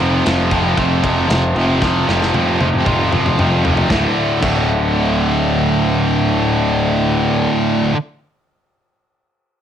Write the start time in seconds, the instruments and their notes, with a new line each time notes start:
Already playing: picked electric bass F1
0.01 distorted electric guitar F2 C3 F3
0.25 picked electric bass F1, distorted electric guitar F2 C3 F3, snare, ride
0.51 picked electric bass F1, distorted electric guitar F2 C3 F3, kick, ride
0.77 picked electric bass F1, distorted electric guitar F2 C3 F3, kick, ride
1.03 picked electric bass F1, distorted electric guitar F2 C3 F3, kick, ride
1.28 picked electric bass F1, distorted electric guitar F2 C3 F3, snare, ride
1.55 picked electric bass F1, distorted electric guitar F2 C3 F3, ride
1.81 picked electric bass F1, distorted electric guitar F2 C3 F3, kick, snare
2.08 picked electric bass F1, distorted electric guitar F2 C3 F3, snare
2.23 snare
2.34 picked electric bass F1, distorted electric guitar F2 C3 F3, high tom
2.60 picked electric bass F1, distorted electric guitar F2 C3 F3, high tom
2.74 mid tom
2.86 picked electric bass F1, distorted electric guitar F2 C3 F3, kick, mid tom
3.12 picked electric bass F1, distorted electric guitar F2 C3 F3, mid tom
3.26 mid tom
3.38 picked electric bass F1, distorted electric guitar F2 C3 F3, mid tom
3.65 picked electric bass F1, distorted electric guitar F2 C3 F3, floor tom
3.77 floor tom
3.90 picked electric bass D1, distorted electric guitar D2 A2 D3, kick, snare
4.42 picked electric bass D1, distorted electric guitar D2 A2, kick, crash
4.46 distorted electric guitar D3